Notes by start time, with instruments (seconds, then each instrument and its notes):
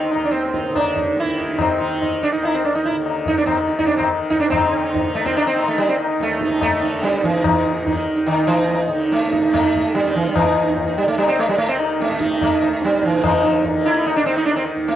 Already playing: tanpura D#2 D3 D#3
0.11 sitar D#4, tabla na
0.15 tanpura D#2
0.24 sitar D4
0.31 sitar C4, tabla te
0.44 tabla te
0.53 sitar D#4, tabla ke
0.65 tabla te
0.69 tanpura D3
0.76 sitar D4, tabla na, tabla ge
0.96 sitar D#4, tabla ge
1.17 sitar E4, tabla te
1.24 tanpura D#3
1.29 tabla te
1.38 sitar D#4, tabla ke
1.49 tabla te
1.58 sitar C4, tabla na, tabla ge
1.79 tanpura D#3, sitar D#4
2.01 sitar D#4, tabla tin, tabla ge
2.23 sitar D4
2.33 tanpura D#2, sitar D#4
2.44 sitar E4, tabla na
2.54 sitar C4
2.65 sitar D4
2.75 sitar D#4
2.85 sitar E4, tabla tin
2.91 tanpura D3
3.06 tabla na
3.26 sitar D#4, tabla tin, tabla ge
3.37 sitar D4, tabla te
3.45 tanpura D#3, sitar C4, tabla na, tabla ge
3.67 sitar D#4
3.79 sitar D#4, tabla tin, tabla ge
3.86 sitar D4, tabla te
3.97 tanpura D#3, sitar C4, tabla na, tabla ge
4.30 sitar D#4, tabla tin, tabla ge
4.40 sitar D4, tabla te
4.50 sitar C4 D#4, tabla na, tabla ge
4.55 tanpura D3
4.63 sitar D#4
4.73 sitar D#4
4.83 sitar D#4
4.93 sitar D#4, tabla tin, tabla ge
5.04 sitar D#4
5.09 tanpura D#3
5.15 sitar A3, tabla na
5.25 sitar C4, tabla ke
5.36 sitar D4, tabla na
5.47 sitar C4
5.55 sitar D#4, tabla na
5.63 tanpura D#3
5.68 sitar A3
5.78 sitar G3, tabla tin
5.88 sitar C4
5.98 sitar D#4, tabla na
6.18 tanpura D#2, tabla te
6.22 sitar A3
6.30 sitar D#4, tabla te
6.41 sitar D#4, tabla ke
6.51 sitar D#4, tabla te
6.61 sitar A3, tabla na, tabla ge
6.72 tanpura D3, sitar D#4
6.81 sitar D#4, tabla te
6.94 sitar D#4
7.03 sitar G3, tabla te
7.14 sitar D#4, tabla te
7.24 tanpura D#3, sitar E3, tabla ke
7.33 sitar D#4, tabla te
7.44 sitar E3, tabla na, tabla ge
7.65 sitar D#4
7.75 tanpura D#3, sitar D#4
7.86 sitar D#4, tabla tin, tabla ge
7.96 sitar D#4
8.16 sitar D#4
8.27 sitar D#3, tabla na
8.34 tanpura D#2, sitar D#4
8.47 sitar E3, tabla na
8.57 sitar D#4
8.69 sitar D#4, tabla tin
8.80 sitar D#4
8.88 tanpura D3, sitar D#4
9.01 sitar D#4
9.12 sitar A3, tabla te
9.23 sitar D#4, tabla te
9.32 sitar D#4, tabla ke
9.42 tanpura D#3, sitar D#4, tabla te
9.53 sitar A3, tabla na, tabla ge
9.64 sitar D#4
9.75 tabla ge
9.95 tanpura D#3, sitar G3, tabla te
10.05 sitar D#4, tabla te
10.15 sitar E3, tabla ke
10.25 sitar G3, tabla te
10.36 sitar E3, tabla na, tabla ge
10.46 tanpura D#2, sitar D#4
10.57 sitar D#4
10.68 sitar D#4
10.77 tabla tin, tabla ge
10.87 sitar D#4
10.98 sitar G3
11.03 tanpura D3
11.08 sitar A3
11.18 sitar G3, tabla na
11.28 sitar C4
11.39 sitar A3
11.49 sitar G3
11.57 tanpura D#3, sitar A3, tabla tin
11.68 sitar C4
11.79 sitar D#4, tabla na
12.00 sitar A3, tabla te
12.09 tanpura D#3, sitar D#4, tabla te
12.20 sitar D#4, tabla ke
12.31 sitar D#4, tabla te
12.41 sitar A3, tabla na, tabla ge
12.61 tanpura D#2, sitar D#4, tabla te
12.73 sitar D#4
12.82 sitar G3, tabla te
12.92 sitar D#4, tabla te
13.02 sitar E3, tabla ke
13.13 tanpura D3, sitar D#4, tabla te
13.23 sitar E3, tabla na, tabla ge
13.33 sitar D#4
13.44 sitar D#4
13.54 sitar D#4
13.64 sitar D#4, tabla tin, tabla ge
13.70 tanpura D#3
13.85 sitar E4, tabla na
13.96 sitar D#4
14.06 sitar D#4, tabla na
14.16 sitar D4
14.23 tanpura D#3, sitar C4
14.37 sitar D#4
14.45 sitar D4, tabla tin
14.56 sitar C4
14.65 sitar D#4
14.76 tanpura D#2
14.88 sitar A3, tabla te